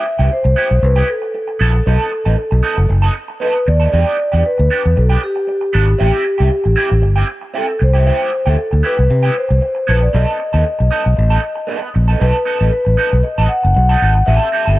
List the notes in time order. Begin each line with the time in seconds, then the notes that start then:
Already playing: E5
0.05 muted clean electric guitar stroke
0.19 C2 B3 E4 G4
0.31 C5, muted clean electric guitar stroke
0.44 C2, muted clean electric guitar stroke
0.56 B3 E4 G4
0.70 B1, muted clean electric guitar stroke
0.82 C2 B4, muted clean electric guitar stroke
0.96 B3 E4 G4
1.09 A4, muted clean electric guitar stroke
1.22 muted clean electric guitar stroke
1.34 muted clean electric guitar stroke
1.48 muted clean electric guitar stroke
1.59 A#1 B3 E4 A4
1.73 muted clean electric guitar stroke
1.86 B1 B3 D#4 A4
2.12 muted clean electric guitar stroke
2.25 A1 B3 D#4 A4
2.37 muted clean electric guitar stroke
2.51 B1, muted clean electric guitar stroke
2.63 B3 D#4 A4
2.77 F#1, muted clean electric guitar stroke
2.89 F#1, muted clean electric guitar stroke
3.02 B3 D#4 A4
3.14 muted clean electric guitar stroke
3.28 muted clean electric guitar stroke
3.40 B3 D#4 A4 B4
3.55 muted clean electric guitar stroke
3.67 D#2 D5, muted clean electric guitar stroke
3.80 B3 D#4 A4
3.92 E2 B3 D4 G4
4.18 muted clean electric guitar stroke
4.32 E2 B3 D4 G4
4.44 B4, muted clean electric guitar stroke
4.58 D2, muted clean electric guitar stroke
4.70 B3 D4 G4
4.84 E2, muted clean electric guitar stroke
4.96 B1 A4, muted clean electric guitar stroke
5.09 B3 D4 G4
5.22 G4, muted clean electric guitar stroke
5.36 muted clean electric guitar stroke
5.47 muted clean electric guitar stroke
5.61 muted clean electric guitar stroke
5.73 G#1 B3 D4 A4
5.87 muted clean electric guitar stroke
5.98 A1 C4 E4 G4
6.25 muted clean electric guitar stroke
6.38 C2 C4 E4 G4
6.51 muted clean electric guitar stroke
6.64 A1, muted clean electric guitar stroke
6.76 C4 E4 G4
6.90 A1, muted clean electric guitar stroke
7.02 G1, muted clean electric guitar stroke
7.16 C4 E4 G4
7.28 muted clean electric guitar stroke
7.41 muted clean electric guitar stroke
7.54 C4 E4 G4 A4
7.67 muted clean electric guitar stroke
7.79 C2, muted clean electric guitar stroke
7.83 C5
7.93 B3 E4 G4
8.06 B3 E4 G4
8.32 muted clean electric guitar stroke
8.46 D2 B3 E4 G4 A4
8.58 muted clean electric guitar stroke
8.71 D2, muted clean electric guitar stroke
8.83 B3 E4 G4 B4
8.97 C2, muted clean electric guitar stroke
9.10 C3, muted clean electric guitar stroke
9.23 B3 E4 G4
9.35 C5, muted clean electric guitar stroke
9.49 C2, muted clean electric guitar stroke
9.61 muted clean electric guitar stroke
9.75 muted clean electric guitar stroke
9.87 A#1 B3 E4 A4 B4
10.01 D5, muted clean electric guitar stroke
10.13 B1 B3 D#4 A4 D#5
10.39 muted clean electric guitar stroke
10.53 D#2 B3 D#4 A4
10.65 muted clean electric guitar stroke
10.79 B1, muted clean electric guitar stroke
10.91 B3 D#4 A4
11.04 B1, muted clean electric guitar stroke
11.16 A1, muted clean electric guitar stroke
11.30 B3 D#4 A4
11.42 muted clean electric guitar stroke
11.55 muted clean electric guitar stroke
11.67 B3 D#4 A4
11.81 muted clean electric guitar stroke
11.94 A#1, muted clean electric guitar stroke
12.08 B3 D#4 A4
12.19 B1 B3 D#4 A4 B4
12.45 B3 D#4 A4
12.59 A1 B3 D#4 A4
12.72 B4, muted clean electric guitar stroke
12.85 A1, muted clean electric guitar stroke
12.97 B3 D#4 A4
13.11 B1, muted clean electric guitar stroke
13.23 D#5, muted clean electric guitar stroke
13.38 A1 B3 D#4 A4
13.49 F#5, muted clean electric guitar stroke
13.63 F#1, muted clean electric guitar stroke
13.75 B1 F#5, muted clean electric guitar stroke
13.89 B3 D#4 A4
14.01 G#1 B3 D#4 A4
14.15 muted clean electric guitar stroke
14.26 A1 C4 G4 A4 E5
14.52 C4 G4 A4
14.66 G1 C4 G4 A4